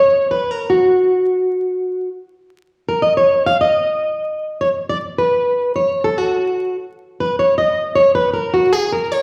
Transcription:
0, 0, Header, 1, 2, 480
1, 0, Start_track
1, 0, Tempo, 575816
1, 242, Time_signature, 4, 2, 24, 8
1, 7687, End_track
2, 0, Start_track
2, 0, Title_t, "Steel-string acoustic guitar"
2, 0, Program_c, 0, 25
2, 0, Note_on_c, 0, 73, 100
2, 255, Note_off_c, 0, 73, 0
2, 258, Note_on_c, 0, 71, 103
2, 424, Note_off_c, 0, 71, 0
2, 424, Note_on_c, 0, 70, 80
2, 577, Note_off_c, 0, 70, 0
2, 581, Note_on_c, 0, 66, 76
2, 1737, Note_off_c, 0, 66, 0
2, 2406, Note_on_c, 0, 70, 86
2, 2520, Note_on_c, 0, 75, 86
2, 2526, Note_off_c, 0, 70, 0
2, 2641, Note_off_c, 0, 75, 0
2, 2644, Note_on_c, 0, 73, 82
2, 2885, Note_off_c, 0, 73, 0
2, 2888, Note_on_c, 0, 77, 107
2, 3005, Note_off_c, 0, 77, 0
2, 3008, Note_on_c, 0, 75, 104
2, 3811, Note_off_c, 0, 75, 0
2, 3843, Note_on_c, 0, 73, 95
2, 3907, Note_off_c, 0, 73, 0
2, 4080, Note_on_c, 0, 74, 101
2, 4145, Note_off_c, 0, 74, 0
2, 4322, Note_on_c, 0, 71, 93
2, 4767, Note_off_c, 0, 71, 0
2, 4798, Note_on_c, 0, 73, 98
2, 5022, Note_off_c, 0, 73, 0
2, 5037, Note_on_c, 0, 69, 94
2, 5151, Note_off_c, 0, 69, 0
2, 5151, Note_on_c, 0, 66, 72
2, 5635, Note_off_c, 0, 66, 0
2, 6004, Note_on_c, 0, 71, 98
2, 6151, Note_off_c, 0, 71, 0
2, 6161, Note_on_c, 0, 73, 93
2, 6314, Note_off_c, 0, 73, 0
2, 6318, Note_on_c, 0, 75, 93
2, 6627, Note_off_c, 0, 75, 0
2, 6631, Note_on_c, 0, 73, 94
2, 6784, Note_off_c, 0, 73, 0
2, 6793, Note_on_c, 0, 71, 97
2, 6945, Note_off_c, 0, 71, 0
2, 6948, Note_on_c, 0, 70, 87
2, 7116, Note_on_c, 0, 66, 88
2, 7119, Note_off_c, 0, 70, 0
2, 7273, Note_off_c, 0, 66, 0
2, 7273, Note_on_c, 0, 68, 76
2, 7437, Note_off_c, 0, 68, 0
2, 7439, Note_on_c, 0, 70, 82
2, 7599, Note_off_c, 0, 70, 0
2, 7599, Note_on_c, 0, 73, 83
2, 7687, Note_off_c, 0, 73, 0
2, 7687, End_track
0, 0, End_of_file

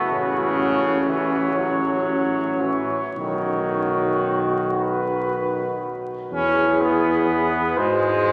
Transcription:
0, 0, Header, 1, 6, 480
1, 0, Start_track
1, 0, Key_signature, 4, "major"
1, 0, Tempo, 995025
1, 54, Time_signature, 6, 3, 24, 8
1, 1015, Tempo, 1054482
1, 2935, Tempo, 963082
1, 3932, End_track
2, 0, Start_track
2, 0, Title_t, "Cornet"
2, 0, Program_c, 0, 56
2, 55, Note_on_c, 0, 73, 63
2, 2063, Note_off_c, 0, 73, 0
2, 2223, Note_on_c, 0, 71, 63
2, 2764, Note_off_c, 0, 71, 0
2, 2930, Note_on_c, 0, 71, 67
2, 3656, Note_on_c, 0, 72, 81
2, 3663, Note_off_c, 0, 71, 0
2, 3932, Note_off_c, 0, 72, 0
2, 3932, End_track
3, 0, Start_track
3, 0, Title_t, "Flugelhorn"
3, 0, Program_c, 1, 56
3, 0, Note_on_c, 1, 66, 71
3, 1337, Note_off_c, 1, 66, 0
3, 1501, Note_on_c, 1, 66, 59
3, 2765, Note_off_c, 1, 66, 0
3, 2932, Note_on_c, 1, 68, 75
3, 3638, Note_off_c, 1, 68, 0
3, 3658, Note_on_c, 1, 68, 75
3, 3932, Note_off_c, 1, 68, 0
3, 3932, End_track
4, 0, Start_track
4, 0, Title_t, "Euphonium"
4, 0, Program_c, 2, 58
4, 57, Note_on_c, 2, 61, 68
4, 1336, Note_off_c, 2, 61, 0
4, 1498, Note_on_c, 2, 66, 62
4, 2764, Note_off_c, 2, 66, 0
4, 2935, Note_on_c, 2, 64, 72
4, 3663, Note_on_c, 2, 66, 76
4, 3670, Note_off_c, 2, 64, 0
4, 3932, Note_off_c, 2, 66, 0
4, 3932, End_track
5, 0, Start_track
5, 0, Title_t, "Trombone"
5, 0, Program_c, 3, 57
5, 0, Note_on_c, 3, 57, 77
5, 50, Note_off_c, 3, 57, 0
5, 53, Note_on_c, 3, 49, 93
5, 523, Note_on_c, 3, 52, 79
5, 530, Note_off_c, 3, 49, 0
5, 768, Note_on_c, 3, 54, 73
5, 775, Note_off_c, 3, 52, 0
5, 1256, Note_on_c, 3, 52, 79
5, 1262, Note_off_c, 3, 54, 0
5, 1426, Note_off_c, 3, 52, 0
5, 1497, Note_on_c, 3, 51, 80
5, 2685, Note_off_c, 3, 51, 0
5, 2937, Note_on_c, 3, 61, 98
5, 3179, Note_on_c, 3, 59, 90
5, 3187, Note_off_c, 3, 61, 0
5, 3661, Note_on_c, 3, 56, 100
5, 3668, Note_off_c, 3, 59, 0
5, 3932, Note_off_c, 3, 56, 0
5, 3932, End_track
6, 0, Start_track
6, 0, Title_t, "Tuba"
6, 0, Program_c, 4, 58
6, 52, Note_on_c, 4, 33, 77
6, 1334, Note_off_c, 4, 33, 0
6, 1496, Note_on_c, 4, 35, 65
6, 2763, Note_off_c, 4, 35, 0
6, 2932, Note_on_c, 4, 40, 73
6, 3638, Note_off_c, 4, 40, 0
6, 3660, Note_on_c, 4, 44, 72
6, 3932, Note_off_c, 4, 44, 0
6, 3932, End_track
0, 0, End_of_file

